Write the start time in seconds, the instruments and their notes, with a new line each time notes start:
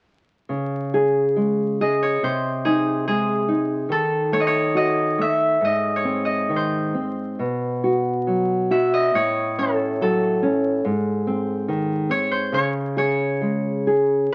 0.49 nylon-string guitar C#3
0.94 nylon-string guitar G#4
1.36 nylon-string guitar G#3
1.81 nylon-string guitar G#4, harp D#5
2.03 harp C#5
2.23 nylon-string guitar C3, harp C5
2.65 nylon-string guitar D#4, harp G#4
3.08 nylon-string guitar G#3, harp G#4
3.48 nylon-string guitar D#4
3.89 nylon-string guitar D#3, harp A4
4.32 nylon-string guitar A3, harp C#5
4.40 harp D#5
4.47 harp C#5
4.75 nylon-string guitar F#4, harp D#5
5.18 nylon-string guitar A3, harp E5
5.61 nylon-string guitar G#2, harp D#5
5.96 harp C#5
6.04 nylon-string guitar C4
6.25 harp D#5
6.49 nylon-string guitar D#3
6.56 harp C5
6.94 nylon-string guitar C4
7.39 nylon-string guitar B2
7.84 nylon-string guitar F#4
8.27 nylon-string guitar F#3
8.71 nylon-string guitar F#4, harp E5
8.94 harp D#5
9.14 nylon-string guitar A2, harp C#5
9.58 nylon-string guitar C#4, harp A4
10.01 nylon-string guitar F#3, harp A4
10.43 nylon-string guitar C#4
10.85 nylon-string guitar G#2
11.27 nylon-string guitar C4
11.68 nylon-string guitar D#3
12.09 nylon-string guitar C4, harp C#5
12.31 harp C5
12.52 nylon-string guitar C#3, harp C#5
12.97 nylon-string guitar G#4, harp C#5
13.41 nylon-string guitar G#3
13.87 nylon-string guitar G#4